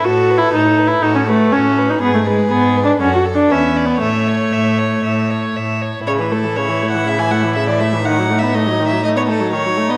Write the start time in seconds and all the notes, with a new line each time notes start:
0.04 A2 F#4 A4
0.30 B4
0.38 E4
0.53 A2 D#4 A4
0.79 B4
0.87 E4
1.02 A2 D#4 F#4 A4
1.15 C#4
1.27 A3 B4
1.52 A2 C#4 F#4 A4
1.78 B4
1.90 D#4
2.01 G#2 B3 G#4
2.15 A3
2.26 G#3 B4
2.51 G#2 B3 G#4
2.76 B4
2.85 D4
3.00 F#2 C#4 F#4 A4
3.14 F#4
3.25 A4
3.35 D4
3.51 E2 C#4 B4 E5
3.77 D5
3.86 B3
4.01 A2 A3 C#5 E5
4.28 C#5
4.52 A2 E5
4.78 C#5
5.04 A2 E5
5.30 C#5
5.56 A2 E5
5.82 C#5
6.07 A2 C#3 E4 C#5
6.19 E3 B4
6.32 A3 A4
6.44 E3
6.57 C#3 C#5
6.69 E3
6.82 A3
6.91 E3 F#5
7.07 C#3 E5
7.19 E3 G#5
7.31 A3 F#5
7.43 E3
7.55 C#3 E5
7.68 E3 D5
7.80 A3 E5
7.93 E3
8.05 D#3 D#4 F#5
8.18 F#3
8.30 A3
8.39 B3 E5
8.54 A3 D#5
8.67 F#3
8.79 D#3
8.87 E5
8.92 F#3
9.04 A3 D#5
9.16 B3 C#5
9.28 A3 A4
9.40 F#3
9.53 D#3 C#5
9.66 F#3
9.77 A3
9.89 B3 D#5